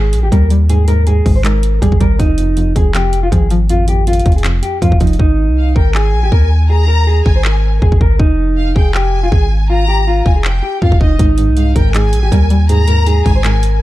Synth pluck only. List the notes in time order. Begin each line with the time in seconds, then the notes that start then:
Already playing: G#2
0.32 G3
0.51 G3
0.70 G#2
0.88 G#2
1.07 G#2
1.26 G#2
1.44 G#2
1.82 G3
2.00 G3
2.19 F2
2.38 F2
2.57 F2
2.76 F2
2.94 F2
3.32 F3
3.51 F3
3.70 F2
3.88 F2
4.07 F2
4.26 F2
4.45 F2
4.82 F3
5.01 F3
11.19 G#2
11.39 G#2
11.57 G#2
11.76 G#2
11.95 G#2
12.32 G3
12.50 G3
12.70 G#2
12.88 G#2
13.07 G#2
13.26 G#2
13.44 G#2